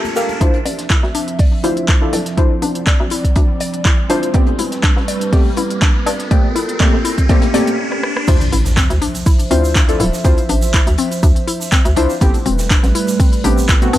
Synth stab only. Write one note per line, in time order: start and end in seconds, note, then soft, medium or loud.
0.00 0.13 G4 medium
0.00 0.14 A4 medium
0.00 0.14 A#4 medium
0.00 0.14 E5 medium
0.16 0.38 G4 loud
0.16 0.38 A4 medium
0.16 0.38 A#4 medium
0.16 0.38 F5 loud
0.41 0.57 D4 medium
0.41 0.57 E4 medium
0.41 0.57 F4 medium
0.41 0.58 C5 loud
1.63 1.98 D4 medium
1.63 1.98 E4 medium
1.63 1.98 F4 medium
1.63 1.99 C5 medium
2.01 2.17 D4 medium
2.01 2.17 E4 medium
2.01 2.18 F4 medium
2.01 2.18 A4 medium
2.37 2.54 D4 medium
2.37 2.54 E4 medium
2.37 2.54 F4 medium
2.37 2.54 C5 medium
4.09 4.26 D4 medium
4.09 4.26 E4 medium
4.09 4.26 F4 medium
4.09 4.26 C5 loud
4.34 4.51 A3 medium
4.34 4.51 B3 medium
4.34 4.51 C4 medium
4.34 4.51 G4 medium
5.32 5.49 A3 medium
5.32 5.49 B3 medium
5.32 5.49 C4 medium
5.32 5.49 G4 loud
6.31 6.47 A3 medium
6.31 6.47 A#3 medium
6.31 6.48 C4 medium
6.31 6.48 G4 loud
6.80 6.97 A3 medium
6.80 6.97 A#3 medium
6.80 6.97 C4 medium
6.80 6.97 G4 loud
7.29 7.46 A3 medium
7.29 7.46 A#3 medium
7.29 7.46 C4 medium
7.29 7.46 G4 loud
7.54 7.70 A3 medium
7.54 7.70 A#3 medium
7.54 7.71 C4 medium
7.54 7.71 G4 loud
8.27 8.44 D4 medium
8.27 8.44 E4 medium
8.27 8.44 F4 medium
8.27 8.44 C5 loud
9.50 9.85 D4 medium
9.50 9.85 E4 medium
9.50 9.85 F4 medium
9.50 9.86 C5 medium
9.88 10.04 D4 medium
9.88 10.04 E4 medium
9.88 10.04 F4 medium
9.88 10.05 A4 loud
10.24 10.41 D4 medium
10.24 10.41 E4 medium
10.24 10.41 F4 medium
10.24 10.41 C5 loud
11.96 12.13 D4 medium
11.96 12.13 E4 medium
11.96 12.13 F4 medium
11.96 12.13 C5 loud
12.21 12.38 A3 medium
12.21 12.38 B3 medium
12.21 12.38 C4 medium
12.21 12.38 G4 loud
13.44 13.79 A3 medium
13.44 13.79 B3 medium
13.44 13.79 C4 medium
13.44 13.79 G4 medium
13.82 13.92 A3 medium
13.82 13.92 B3 medium
13.82 13.92 C4 medium
13.82 13.92 F#4 loud